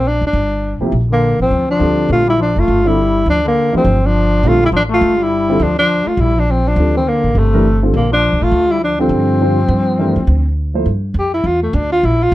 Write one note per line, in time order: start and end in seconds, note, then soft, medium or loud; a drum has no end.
0.00 0.18 A#1 medium
0.08 0.24 D4 medium
0.21 0.32 F#1 medium
0.26 0.80 D4 medium
0.33 0.77 G1 medium
0.80 0.91 C3 medium
0.80 0.91 F3 medium
0.80 0.91 A#3 medium
0.80 0.91 E4 medium
0.80 0.91 G4 medium
0.80 muted upright bass stroke soft
0.92 1.36 A#1 medium
1.11 1.37 D3 medium
1.11 1.39 A#3 medium
1.39 1.50 A1 medium
1.39 1.67 F3 medium
1.39 1.68 C4 medium
1.51 1.78 D2 medium
1.68 2.06 F3 medium
1.68 2.07 D4 medium
1.78 2.07 D2 medium
1.78 2.22 D3 medium
1.78 2.23 G3 soft
1.78 2.23 C4 soft
1.78 2.23 F4 soft
1.78 2.23 A4 medium
2.09 2.53 A#1 medium
2.09 2.26 A3 medium
2.09 2.27 F4 loud
2.27 2.37 G3 medium
2.27 2.39 E4 medium
2.38 2.57 F3 medium
2.42 2.61 D4 medium
2.55 2.67 F#1 medium
2.55 2.87 A3 medium
2.55 2.89 F4 medium
2.68 3.23 G1 medium
2.85 2.96 D3 medium
2.85 2.96 G3 medium
2.85 3.26 G3 medium
2.85 2.96 C4 medium
2.85 3.27 E4 medium
2.85 2.96 F4 medium
2.85 2.96 A4 medium
3.26 3.70 D2 medium
3.26 3.43 F3 medium
3.26 3.44 D4 medium
3.43 3.71 D3 medium
3.48 3.73 A#3 medium
3.72 3.83 E3 medium
3.72 4.02 F3 medium
3.72 3.83 A3 medium
3.72 3.83 D4 medium
3.72 3.83 G4 medium
3.72 3.84 A#4 medium
3.72 muted upright bass stroke soft
3.77 4.08 C4 medium
3.84 4.40 G1 medium
4.02 4.46 F3 medium
4.02 4.49 D4 medium
4.43 4.70 A#1 medium
4.43 4.59 D3 medium
4.43 4.60 G3 medium
4.43 4.62 A3 medium
4.43 4.60 C4 medium
4.43 4.60 F4 medium
4.43 4.60 A4 medium
4.48 4.63 F4 medium
4.63 4.67 G3 medium
4.63 4.69 E4 medium
4.72 4.99 A1 medium
4.72 4.81 F3 medium
4.76 4.83 D4 medium
4.89 5.20 A3 medium
4.94 5.24 F4 medium
5.01 5.57 G1 medium
5.19 5.61 G3 medium
5.23 5.64 E4 medium
5.49 5.59 D3 medium
5.49 5.60 G3 medium
5.49 5.59 C4 medium
5.49 5.60 F4 medium
5.49 5.60 A4 medium
5.59 6.03 D2 medium
5.59 5.77 F3 medium
5.59 5.78 D4 medium
5.79 6.08 F3 medium
5.79 6.09 D4 medium
6.06 6.19 A3 medium
6.06 6.22 F4 medium
6.06 muted upright bass stroke soft
6.17 6.73 A#1 medium
6.17 6.37 G3 medium
6.17 6.41 E4 medium
6.35 6.47 F3 medium
6.35 6.53 D4 medium
6.47 6.65 F3 medium
6.51 6.70 C4 medium
6.65 6.94 F3 medium
6.65 6.96 D4 medium
6.76 7.20 D2 medium
6.76 6.93 D3 soft
6.76 6.93 G3 soft
6.76 6.93 C4 soft
6.76 6.93 F4 soft
6.76 6.94 A4 medium
6.95 7.07 E3 medium
6.95 7.10 C4 medium
7.05 7.37 D3 medium
7.05 7.40 A#3 medium
7.23 7.34 A1 medium
7.35 7.91 G1 medium
7.35 7.82 C3 medium
7.35 7.84 A3 medium
7.54 7.64 E3 medium
7.54 7.64 A3 medium
7.54 7.64 D4 medium
7.54 7.64 G4 medium
7.54 7.64 A#4 medium
7.83 7.93 D3 medium
7.83 7.93 G3 medium
7.83 7.93 C4 medium
7.83 7.93 F4 medium
7.83 7.93 A4 medium
7.93 8.30 A#1 medium
7.93 8.10 D3 medium
7.93 8.11 A#3 medium
8.11 8.41 F3 medium
8.11 8.44 D4 medium
8.33 8.41 C2 medium
8.40 8.51 A1 medium
8.40 8.71 A3 medium
8.40 8.73 F4 medium
8.51 9.07 D2 medium
8.70 8.81 G3 medium
8.70 8.82 E4 medium
8.81 8.98 F3 medium
8.81 8.99 D4 medium
8.98 9.38 D3 medium
8.98 10.53 F3 medium
8.98 9.38 G3 medium
8.98 9.38 C4 medium
8.98 10.54 C4 medium
8.98 9.38 F4 medium
8.98 9.38 A4 medium
9.09 9.65 G2 medium
9.40 9.56 D3 medium
9.40 9.57 G3 medium
9.40 9.57 C4 soft
9.40 9.57 F4 medium
9.40 9.57 C5 medium
9.68 10.12 G2 medium
9.98 10.15 E3 medium
9.98 10.14 A3 medium
9.98 10.15 D4 medium
9.98 10.15 G4 medium
9.98 10.15 A#4 medium
10.16 10.27 F2 medium
10.27 10.83 D2 medium
10.74 10.85 F3 medium
10.74 10.85 A#3 soft
10.74 10.85 E4 soft
10.74 10.85 A4 soft
10.74 10.85 C5 medium
10.86 11.14 G2 medium
11.14 11.43 F2 medium
11.19 11.33 G4 medium
11.34 11.48 E4 medium
11.44 11.73 E2 medium
11.44 11.62 F4 medium
11.63 11.77 A3 medium
11.73 12.02 D2 medium
11.73 11.91 D4 medium
11.92 12.07 F4 medium
12.03 12.31 A#1 medium
12.03 12.24 E4 medium
12.23 12.34 F4 loud